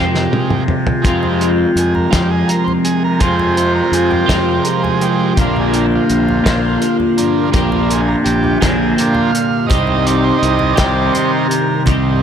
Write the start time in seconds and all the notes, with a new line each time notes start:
Already playing: C2 F2 C3 C4 F4 G4
0.00 F2 C3 F3 G#3
0.15 snare
0.30 F3 G#3 C4, high tom
0.37 C3
0.50 mid tom, low conga
0.68 mid tom, low conga
0.87 floor tom, low conga
1.00 F2 C3 F3 G#3 C4
1.04 F2 C3 F3 G#3 C4 F4, kick, closed hi-hat, high conga, low conga
1.23 low conga
1.41 closed hi-hat
1.58 C2, low conga
1.75 F2 G#4, closed hi-hat
1.95 A#4, low conga
2.11 F2 C3 F3 G#3 C4 F4 G4, kick, snare, closed hi-hat, high conga
2.31 G#4
2.48 A#4, closed hi-hat, low conga
2.64 C5, low conga
2.84 C3 G#4, closed hi-hat
3.04 A#4
3.19 F2 C3 F3 G#3 C4 F4 G#4 C5, kick, closed hi-hat, high conga, low conga
3.38 G#4, low conga
3.44 C3
3.57 C5, closed hi-hat
3.75 A#4, low conga
3.92 F2 G#4, closed hi-hat
4.05 C2
4.10 G4, low conga
4.26 F2 C3 F3 G#3 C4 F4, kick, snare, closed hi-hat, high conga
4.63 A#4, closed hi-hat, low conga
4.83 G#4, low conga
5.00 F3 G#3 C4 G4, closed hi-hat
5.31 C3
5.36 A#1 A#2 D3 F3 A#3 D4 F4, kick, closed hi-hat, high conga, low conga
5.40 D4 F4
5.56 G#4, low conga
5.74 G4, closed hi-hat
5.92 C3 F4, low conga
6.10 A#1, closed hi-hat, low conga
6.29 low conga
6.44 A#1 A#2 D3 A#3 D4 F4, kick, snare, closed hi-hat, high conga
6.53 C2
6.82 closed hi-hat, low conga
7.00 low conga
7.17 G2 F3 A#3 D4, closed hi-hat
7.52 A#1 A#2 D3 F3 A#3 D4 F4 G4, kick, closed hi-hat, high conga, low conga
7.72 low conga
7.78 C3
7.91 G#4, closed hi-hat
8.08 A#4
8.24 A#1 G4, closed hi-hat
8.39 C3
8.44 low conga
8.60 A#1 A#2 D3 A#3 D4 F4 G#4, kick, snare, closed hi-hat, high conga
8.96 F3 A#3 G4, closed hi-hat, low conga
9.01 C2 D4
9.12 F4, low conga
9.32 F5, closed hi-hat
9.63 G2 D#5
9.68 C2 C3 D#3 G3 C4 D#4 G4, kick, closed hi-hat, high conga, low conga
9.87 low conga
10.06 D5, closed hi-hat
10.23 C3 C5, low conga
10.39 C2 D#5
10.43 closed hi-hat
10.59 low conga
10.73 G4 D5
10.77 C2 C3 D#3 G3 C4, kick, snare, closed hi-hat, high conga
10.86 C3
11.13 G3 C4 D#4 C5, closed hi-hat, low conga
11.30 A#4
11.48 C2 A#4, closed hi-hat
11.86 C2 C3 D#3 G3 C4 D#4 G4, kick, closed hi-hat, high conga, low conga
12.09 G2